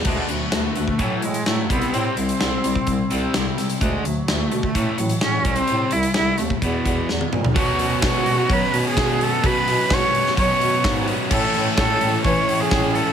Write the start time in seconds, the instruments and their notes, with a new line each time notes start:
0.05 bass clarinet D2, clean electric guitar D3 A3 B3 F#4, overdriven electric guitar D3 A3 D4, cello G#3, kick, crash
0.29 bass clarinet D2, overdriven electric guitar D3 A3, cello F#3, clean electric guitar A3 B3 F#4, closed hi-hat
0.52 bass clarinet D2, overdriven electric guitar D3 A3, clean electric guitar D3 A3 B3 F#4, cello A3, snare, closed hi-hat
0.76 bass clarinet D2, overdriven electric guitar D3 A3, clean electric guitar A3 B3 F#4, closed hi-hat
0.88 cello A3, kick
0.98 clean electric guitar A2 F#3 C#4 E4, overdriven electric guitar A2 E3 A3, bass clarinet A2, cello F#3, kick, closed hi-hat
1.22 overdriven electric guitar A2 E3, bass clarinet A2, clean electric guitar F#3 C#4 E4, cello G#3, closed hi-hat
1.34 closed hi-hat
1.46 clean electric guitar A2 F#3 C#4 E4, overdriven electric guitar A2 E3, bass clarinet A2, cello A3, snare, closed hi-hat
1.69 bass clarinet C2, overdriven electric guitar C3 G3 C4, clean electric guitar C3 G3 C4 E4, cello B3, kick, closed hi-hat
1.81 closed hi-hat
1.93 bass clarinet A2, overdriven electric guitar C3 G3 C4, clean electric guitar C3 G3 C4 E4, cello C4, closed hi-hat
2.16 bass clarinet C2, overdriven electric guitar C3 G3, clean electric guitar G3 C4 E4, cello C4, closed hi-hat
2.29 closed hi-hat
2.39 bass clarinet C2, clean electric guitar C3 G3 C4 E4, overdriven electric guitar C3 G3, snare, closed hi-hat
2.63 bass clarinet C2, overdriven electric guitar C3 G3, clean electric guitar G3 C4 E4, closed hi-hat
2.75 kick
2.87 bass clarinet C2, overdriven electric guitar C3 G3, kick, closed hi-hat
3.10 bass clarinet C2, overdriven electric guitar C3 G3 C4, clean electric guitar G3 C4 E4, closed hi-hat
3.33 bass clarinet C2, clean electric guitar C3 G3 C4 E4, overdriven electric guitar C3 G3, snare, closed hi-hat
3.58 overdriven electric guitar C3 G3, snare, closed hi-hat
3.70 closed hi-hat
3.81 bass clarinet D2, overdriven electric guitar D3 A3 D4, cello G#3, kick, closed hi-hat
4.04 bass clarinet D2, overdriven electric guitar D3 A3, cello F#3, closed hi-hat
4.28 bass clarinet D2, overdriven electric guitar D3 A3, cello A3, snare, closed hi-hat
4.51 bass clarinet B2, overdriven electric guitar D3 A3, closed hi-hat
4.63 cello A3, kick
4.75 overdriven electric guitar A2 E3 A3, bass clarinet A2, kick, closed hi-hat
4.98 bass clarinet A2, overdriven electric guitar A2 E3, cello F#3, closed hi-hat
5.09 closed hi-hat
5.21 bass clarinet A2, overdriven electric guitar A2 E3, cello C#4, snare, closed hi-hat
5.44 bass clarinet C2, overdriven electric guitar C3 G3 C4, cello C#4, kick, closed hi-hat
5.55 cello C4, closed hi-hat
5.68 bass clarinet A2, overdriven electric guitar C3 G3 C4, closed hi-hat
5.91 bass clarinet C2, overdriven electric guitar C3 G3, cello E4, closed hi-hat
6.03 closed hi-hat
6.14 bass clarinet C2, overdriven electric guitar C3 G3, cello E4, snare, closed hi-hat
6.38 bass clarinet D#2, overdriven electric guitar C3 G3, cello A3, closed hi-hat
6.50 kick
6.61 bass clarinet E2, overdriven electric guitar E2 B2 E3, cello B3, kick, closed hi-hat
6.85 overdriven electric guitar E2 B2 E3, bass clarinet E2, kick, closed hi-hat
7.09 overdriven electric guitar E2 B2, bass clarinet E2, snare
7.21 high tom
7.32 overdriven electric guitar E2 B2, bass clarinet A#2, mid tom
7.44 floor tom
7.55 overdriven electric guitar B2 F#3 B3 C#4, bass clarinet B2, cello F#4, kick, open hi-hat
7.79 bass clarinet B2, overdriven electric guitar F#3 B3 C#4, open hi-hat
8.02 overdriven electric guitar B2 F#3 B3 C#4, bass clarinet B2, kick, snare, open hi-hat
8.06 cello F#4
8.26 bass clarinet B2, open hi-hat
8.49 overdriven electric guitar B2 F#3 B3 C#4, bass clarinet F#3, cello B4, kick, open hi-hat
8.73 bass clarinet B2, overdriven electric guitar F#3 B3 C#4, open hi-hat
8.88 cello G#4
8.96 overdriven electric guitar B2 F#3 B3 C#4, bass clarinet B2, kick, snare, open hi-hat
9.19 overdriven electric guitar F#3 B3 C#4, cello A4, open hi-hat
9.44 overdriven electric guitar B2 F#3 B3 C#4, bass clarinet B2, cello B4, kick, open hi-hat
9.67 bass clarinet B2, overdriven electric guitar F#3 B3 C#4, open hi-hat
9.90 bass clarinet B2, overdriven electric guitar B2 F#3 B3 C#4, cello C#5, kick, snare, open hi-hat
10.15 open hi-hat
10.26 snare
10.36 overdriven electric guitar B2 F#3 B3 C#4, bass clarinet F#3, cello C#5, kick, open hi-hat
10.60 bass clarinet B2, overdriven electric guitar F#3 B3 C#4, open hi-hat
10.84 bass clarinet G#2, overdriven electric guitar B2 F#3 B3 C#4, kick, snare, open hi-hat
11.07 overdriven electric guitar F#3 B3 C#4, open hi-hat
11.30 overdriven electric guitar A2 E3 A3 C#4 E4, bass clarinet A2, cello A4, kick, crash
11.55 bass clarinet A2, overdriven electric guitar A3 C#4 E4, open hi-hat
11.76 bass clarinet A2, overdriven electric guitar E3 A3 C#4 E4, cello A4, kick, snare, open hi-hat
12.01 bass clarinet A2, open hi-hat
12.24 overdriven electric guitar A2 E3 A3 C#4 E4, bass clarinet E3, cello C#5, kick, open hi-hat
12.47 bass clarinet A2, overdriven electric guitar A3 C#4 E4, open hi-hat
12.60 cello G#4
12.70 bass clarinet A2, overdriven electric guitar E3 A3 C#4 E4, kick, snare, open hi-hat
12.95 overdriven electric guitar A3 C#4 E4, cello A4, open hi-hat